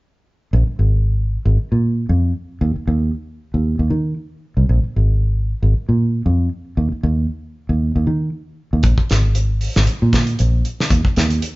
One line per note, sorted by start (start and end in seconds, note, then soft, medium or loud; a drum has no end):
0.53 0.66 A#1 medium
0.67 muted fingered electric bass stroke soft
0.79 1.36 G#1 medium
1.45 1.56 G#1 medium
1.58 muted fingered electric bass stroke soft
1.72 2.05 A#2 medium
2.09 2.32 F2 medium
2.61 2.74 D#2 medium
2.76 muted fingered electric bass stroke soft
2.87 3.10 D#2 medium
3.54 3.76 D#2 medium
3.79 3.90 D#2 medium
3.90 4.13 D#3 medium
4.57 4.67 C2 medium
4.69 4.82 A#1 medium
4.84 muted fingered electric bass stroke soft
4.96 5.53 G#1 medium
5.63 5.72 G#1 medium
5.74 muted fingered electric bass stroke soft
5.89 6.21 A#2 medium
6.26 6.48 F2 medium
6.77 6.89 D#2 medium
6.92 muted fingered electric bass stroke soft
7.03 7.26 D#2 medium
7.69 7.91 D#2 medium
7.96 8.05 D#2 medium
8.07 8.29 D#3 medium
8.73 8.83 D#2 medium
8.83 8.96 A#1 medium
8.83 kick medium
8.83 closed hi-hat medium
8.98 muted fingered electric bass stroke soft
8.98 kick medium
9.10 9.67 G#1 medium
9.10 snare medium
9.10 closed hi-hat soft
9.35 closed hi-hat medium
9.61 open hi-hat medium
9.76 9.86 G#1 medium
9.76 snare medium
9.87 muted fingered electric bass stroke soft
9.87 closed hi-hat medium
10.02 10.34 A#2 medium
10.13 kick medium
10.13 snare medium
10.13 closed hi-hat soft
10.27 closed hi-hat soft
10.39 10.62 A#1 medium
10.39 closed hi-hat medium
10.65 closed hi-hat soft
10.80 snare medium
10.90 11.03 D#2 medium
10.90 kick medium
10.90 closed hi-hat medium
11.05 muted fingered electric bass stroke soft
11.05 kick medium
11.16 11.39 D#2 medium
11.16 snare medium
11.16 closed hi-hat soft
11.30 closed hi-hat soft
11.42 closed hi-hat medium